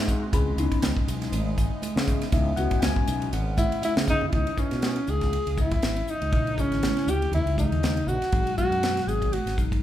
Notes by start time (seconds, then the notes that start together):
Already playing: G#2 G#3 C4 F#4 E5
0.08 kick, hi-hat pedal, ride
0.32 C#2 C#3 E3 G#3 B3 C#4 D#4 G#4 B5, kick, hi-hat pedal, ride
0.57 C#2 E3 B3 C#4 D#4, hi-hat pedal, ride
0.72 muted fretless electric bass stroke, kick, ride
0.82 C#2, snare, hi-hat pedal, ride, muted conga, high conga
0.96 muted fretless electric bass stroke, kick
1.07 B1, hi-hat pedal, ride
1.22 snare, ride
1.32 G#1, hi-hat pedal, ride, muted conga, high conga
1.58 kick, hi-hat pedal, ride
1.82 muted fretless electric bass stroke, hi-hat pedal, ride, high conga
1.96 C#3, snare
2.07 kick, hi-hat pedal, ride
2.22 snare, ride
2.32 C#2 E3 B3 C#4 D#4 E5, kick, hi-hat pedal, ride
2.57 C#2 E3 B3 C#4 F#4 F#5, hi-hat pedal, ride
2.71 kick, ride
2.79 C#2 G5, snare, hi-hat pedal, ride, muted conga, high conga, low conga
2.83 G#5
2.96 muted fretless electric bass stroke, kick
3.07 B1, hi-hat pedal, ride
3.22 ride
3.32 G#1 F#5, hi-hat pedal, ride, muted conga
3.57 E4, kick, hi-hat pedal, ride, muted conga, high conga
3.72 ride
3.82 E4, muted fretless electric bass stroke, hi-hat pedal, ride, high conga
3.96 C#3, snare, high conga
4.07 D#4, kick, hi-hat pedal, ride, low conga
4.21 low conga
4.28 D#3 B3 E4
4.33 C#2 C#4 D#4 E4, kick, ride, muted conga
4.47 ride
4.57 B3 C#4 D#4 E4, muted fretless electric bass stroke, kick, hi-hat pedal
4.71 B2, snare, ride
4.82 C#4, snare, ride, high conga
4.96 ride
5.07 C#2 G#4, hi-hat pedal
5.21 kick, snare, ride
5.33 ride, muted conga, high conga
5.47 C#2, ride
5.57 E3 B3 C#4 E4, kick, hi-hat pedal
5.71 kick, ride
5.82 G#1, snare, ride, high conga
5.96 ride
6.07 D#4, hi-hat pedal, muted conga
6.21 C#2, ride
6.32 A#1 C#3 G#3 A#3 E4, kick, ride, muted conga
6.47 ride
6.57 C#3 G#3 A#3 C#4 E4, kick, hi-hat pedal
6.71 G#1, snare, ride
6.82 snare, ride, high conga
6.97 snare, ride
7.07 D2 G4, hi-hat pedal
7.22 ride
7.31 D#2 C#3 E3 G3 D#4 E4, ride, muted conga, low conga
7.46 C#2, ride
7.58 C#3 E3 G3 D#4, kick, hi-hat pedal, muted conga, high conga
7.71 D#2, ride
7.83 snare, ride, high conga
7.97 ride
8.07 A#1 F#4, hi-hat pedal, muted conga, low conga
8.22 snare, ride
8.32 G#1 B2 F#3 G#3 D#4, kick, ride
8.47 ride
8.57 B2 F#3 G#3 B3 F#4, kick, hi-hat pedal
8.71 F#2, ride
8.83 snare, ride, high conga
8.97 snare, ride
9.07 G#1 G#4, hi-hat pedal
9.22 kick, ride
9.33 F#4, ride, muted conga, high conga
9.46 G#1, snare, ride
9.57 B2 F#3 G#3 D#4, kick, hi-hat pedal
9.72 kick, ride